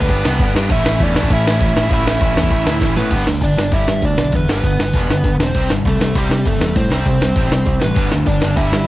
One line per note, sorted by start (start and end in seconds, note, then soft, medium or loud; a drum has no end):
0.00 0.52 B3 medium
0.00 0.10 G4 medium
0.00 0.52 B4 loud
0.00 kick medium
0.09 0.24 G1 loud
0.09 0.26 G2 loud
0.09 0.26 D3 loud
0.09 0.25 G3 loud
0.09 0.26 B3 loud
0.09 0.25 D4 loud
0.09 0.24 G4 loud
0.09 kick loud
0.09 crash medium
0.25 0.39 C2 medium
0.25 0.39 G2 medium
0.25 0.40 D3 medium
0.25 0.41 G3 medium
0.25 0.41 B3 medium
0.25 0.42 D4 medium
0.25 0.41 G4 loud
0.25 snare loud
0.39 0.54 G1 medium
0.39 0.56 G2 medium
0.39 0.57 D3 medium
0.39 0.56 G3 medium
0.39 0.56 B3 loud
0.39 0.55 D4 medium
0.39 0.55 G4 medium
0.39 kick loud
0.39 crash medium
0.55 0.69 G2 loud
0.55 0.70 G2 medium
0.55 0.70 D3 medium
0.55 0.70 G3 medium
0.55 0.70 B3 loud
0.55 0.70 D4 medium
0.55 0.69 G4 loud
0.55 snare loud
0.70 0.84 A1 medium
0.70 0.87 A2 loud
0.70 0.87 E3 loud
0.70 0.86 A3 medium
0.70 0.86 C#4 medium
0.70 0.99 E4 medium
0.70 0.85 E4 loud
0.70 1.02 E5 loud
0.70 kick loud
0.70 crash medium
0.84 0.99 A1 medium
0.84 1.00 A2 medium
0.84 1.01 E3 medium
0.84 1.01 A3 medium
0.84 1.01 C#4 loud
0.84 1.02 E4 medium
0.84 snare loud
1.00 1.14 E2 loud
1.00 1.16 A2 medium
1.00 1.16 E3 medium
1.00 1.15 A3 medium
1.00 1.15 C#4 medium
1.00 1.14 E4 medium
1.00 1.15 D5 loud
1.00 kick loud
1.00 crash medium
1.04 1.16 D4 medium
1.15 1.29 A1 medium
1.15 1.28 A2 medium
1.15 1.28 E3 medium
1.15 1.29 A3 medium
1.15 1.30 C#4 medium
1.15 1.30 D4 medium
1.15 1.30 E4 loud
1.15 1.30 D5 medium
1.15 snare loud
1.23 kick loud
1.29 1.59 A1 loud
1.29 1.45 A2 loud
1.29 1.45 E3 loud
1.29 1.44 A3 loud
1.29 1.44 C#4 loud
1.29 1.43 E4 loud
1.29 kick loud
1.29 crash medium
1.33 1.88 E4 medium
1.33 1.91 E5 loud
1.44 1.58 A2 medium
1.44 1.58 E3 medium
1.44 1.59 A3 medium
1.44 1.60 C#4 medium
1.44 1.60 E4 loud
1.44 snare loud
1.59 1.75 A1 medium
1.59 1.75 A2 medium
1.59 1.75 E3 medium
1.59 1.74 A3 medium
1.59 1.74 C#4 loud
1.59 1.73 E4 loud
1.59 kick loud
1.59 crash medium
1.74 1.90 A1 medium
1.74 1.87 A2 medium
1.74 1.88 E3 medium
1.74 1.88 A3 medium
1.74 1.89 C#4 medium
1.74 1.89 E4 medium
1.74 snare loud
1.88 2.20 A1 loud
1.88 2.05 A2 loud
1.88 2.04 E3 loud
1.88 2.04 A3 loud
1.88 2.04 C#4 loud
1.88 2.03 E4 loud
1.88 kick loud
1.88 crash medium
1.93 2.06 E4 medium
1.93 2.07 E5 loud
2.04 2.18 A2 medium
2.04 2.19 E3 medium
2.04 2.19 A3 loud
2.04 2.20 C#4 loud
2.04 2.20 E4 loud
2.04 snare loud
2.08 2.94 E4 medium
2.08 2.94 E5 medium
2.19 2.36 A1 medium
2.19 2.35 A2 medium
2.19 2.35 E3 medium
2.19 2.34 A3 medium
2.19 2.34 C#4 medium
2.19 2.33 E4 medium
2.19 kick loud
2.19 crash medium
2.34 2.50 E2 medium
2.34 2.48 A2 medium
2.34 2.49 E3 medium
2.34 2.50 A3 medium
2.34 2.50 C#4 medium
2.34 2.51 E4 medium
2.34 snare loud
2.43 kick loud
2.49 2.66 A1 loud
2.49 2.66 A2 loud
2.49 2.65 E3 loud
2.49 2.65 A3 loud
2.49 2.64 C#4 loud
2.49 2.64 E4 loud
2.49 kick loud
2.49 crash medium
2.65 2.80 D2 medium
2.65 2.79 A2 medium
2.65 2.80 E3 medium
2.65 2.80 A3 medium
2.65 2.80 C#4 medium
2.65 2.81 E4 loud
2.65 snare loud
2.80 2.96 A1 medium
2.80 2.96 A2 medium
2.80 2.96 E3 medium
2.80 2.95 A3 medium
2.80 2.94 C#4 loud
2.80 2.94 E4 loud
2.80 kick loud
2.80 snare medium
2.95 3.13 A2 loud
2.95 3.11 A2 medium
2.95 3.11 E3 medium
2.95 3.11 A3 medium
2.95 3.25 B3 medium
2.95 3.10 C#4 medium
2.95 3.10 E4 loud
2.95 3.25 B4 medium
2.95 floor tom medium
3.11 3.24 G1 medium
3.11 3.26 G2 medium
3.11 3.26 D3 medium
3.11 3.26 G3 medium
3.11 kick loud
3.11 open hi-hat medium
3.11 crash loud
3.27 3.41 D2 medium
3.27 3.41 G2 medium
3.27 3.41 D3 medium
3.27 snare loud
3.41 3.55 G1 medium
3.41 3.56 G2 medium
3.41 3.56 D3 medium
3.41 3.72 D4 medium
3.41 3.71 D5 medium
3.41 kick loud
3.41 open hi-hat medium
3.57 3.71 G1 medium
3.57 3.70 G2 medium
3.57 3.71 D3 medium
3.57 snare loud
3.71 3.85 G1 medium
3.71 3.86 G2 medium
3.71 3.87 D3 loud
3.71 3.87 G3 medium
3.71 4.01 E4 medium
3.71 4.05 E5 medium
3.71 kick loud
3.71 open hi-hat medium
3.87 4.01 G2 medium
3.87 4.01 D3 medium
3.87 snare loud
4.02 4.16 D2 medium
4.02 4.16 G2 medium
4.02 4.17 D3 medium
4.02 4.33 D4 medium
4.02 4.35 D5 medium
4.02 kick loud
4.02 open hi-hat medium
4.17 4.31 B1 medium
4.17 4.32 G2 medium
4.17 4.32 D3 medium
4.17 snare loud
4.32 4.46 E2 medium
4.32 4.47 G2 medium
4.32 4.47 D3 medium
4.32 4.48 B3 medium
4.32 4.49 B4 medium
4.32 kick loud
4.32 open hi-hat medium
4.48 4.62 G1 medium
4.48 4.62 G2 medium
4.48 4.63 D3 medium
4.48 4.63 G3 loud
4.48 5.36 B3 medium
4.48 5.36 B4 medium
4.48 snare loud
4.63 4.77 G1 medium
4.63 4.77 G2 medium
4.63 4.78 D3 medium
4.63 kick loud
4.63 open hi-hat medium
4.79 4.92 G1 medium
4.79 4.93 G2 medium
4.79 4.93 D3 medium
4.79 snare loud
4.93 5.07 E1 medium
4.93 5.08 G2 medium
4.93 5.09 D3 medium
4.93 5.09 G3 medium
4.93 kick loud
4.93 open hi-hat medium
5.08 5.22 G1 medium
5.08 5.23 G2 medium
5.08 5.23 D3 medium
5.08 snare loud
5.24 5.37 G1 medium
5.24 5.38 G2 medium
5.24 5.39 D3 medium
5.24 kick loud
5.24 open hi-hat medium
5.38 5.52 E1 medium
5.38 5.53 G2 medium
5.38 5.54 D3 medium
5.38 snare loud
5.43 5.69 C4 medium
5.43 5.70 C5 medium
5.54 5.68 C2 medium
5.54 5.69 C3 medium
5.54 5.69 G3 medium
5.54 5.70 C4 medium
5.54 kick loud
5.54 open hi-hat medium
5.70 5.83 G1 medium
5.70 5.84 C3 medium
5.70 5.84 G3 medium
5.70 snare loud
5.85 5.98 C2 medium
5.85 5.98 C3 medium
5.85 5.99 G3 medium
5.85 6.14 A3 medium
5.85 6.15 A4 medium
5.85 kick loud
5.85 open hi-hat medium
5.99 6.13 C2 medium
5.99 6.13 C3 medium
5.99 6.14 G3 medium
5.99 snare loud
6.15 6.28 C2 medium
6.15 6.29 C3 medium
6.15 6.30 G3 medium
6.15 6.45 G3 medium
6.15 6.30 C4 medium
6.15 6.45 G4 medium
6.15 kick loud
6.15 open hi-hat medium
6.29 6.43 C3 medium
6.29 6.44 C3 medium
6.29 6.44 G3 medium
6.29 snare loud
6.45 6.59 G1 medium
6.45 6.60 C3 medium
6.45 6.60 G3 medium
6.45 6.75 A3 medium
6.45 6.75 A4 medium
6.45 kick loud
6.45 open hi-hat medium
6.59 6.73 E2 medium
6.59 6.75 C3 medium
6.59 6.75 G3 medium
6.59 snare loud
6.76 6.89 A2 medium
6.76 6.90 C3 medium
6.76 6.90 G3 medium
6.76 6.90 C4 medium
6.76 6.91 C5 loud
6.76 kick loud
6.76 open hi-hat medium
6.90 7.03 C2 medium
6.90 7.06 C3 medium
6.90 7.06 G3 medium
6.90 7.78 C4 medium
6.90 7.07 C4 medium
6.90 7.83 C5 medium
6.90 snare loud
7.05 7.19 C2 medium
7.05 7.21 C3 medium
7.05 7.21 G3 medium
7.05 kick loud
7.05 open hi-hat medium
7.21 7.34 C2 medium
7.21 7.35 C3 medium
7.21 7.36 G3 medium
7.21 snare loud
7.36 7.49 A1 medium
7.36 7.51 C3 medium
7.36 7.51 G3 loud
7.36 7.52 C4 loud
7.36 kick loud
7.36 open hi-hat medium
7.51 7.65 C2 medium
7.51 7.65 C3 medium
7.51 7.66 G3 medium
7.51 snare loud
7.66 7.80 C2 medium
7.66 7.80 C3 medium
7.66 7.81 G3 medium
7.66 kick loud
7.66 open hi-hat medium
7.81 7.96 A1 medium
7.81 7.96 C3 medium
7.81 7.96 G3 medium
7.81 8.10 B3 medium
7.81 8.11 B4 medium
7.81 snare loud
7.96 8.10 G1 medium
7.96 8.11 G2 medium
7.96 8.11 D3 medium
7.96 8.12 G3 loud
7.96 kick loud
7.96 open hi-hat medium
8.12 8.26 D2 medium
8.12 8.25 G2 medium
8.12 8.26 D3 medium
8.12 snare loud
8.26 8.40 G1 medium
8.26 8.40 G2 medium
8.26 8.40 D3 medium
8.26 8.55 D4 medium
8.26 8.58 D5 medium
8.26 kick loud
8.26 open hi-hat medium
8.41 8.56 G1 medium
8.41 8.54 G2 medium
8.41 8.55 D3 medium
8.41 8.87 G3 medium
8.41 snare loud
8.45 8.87 G2 medium
8.56 8.70 G1 medium
8.56 8.70 G2 medium
8.56 8.71 D3 medium
8.56 8.72 G3 medium
8.56 8.85 E4 medium
8.56 8.87 E5 loud
8.56 kick loud
8.56 open hi-hat medium
8.71 8.86 G2 medium
8.71 8.86 D3 medium
8.71 snare loud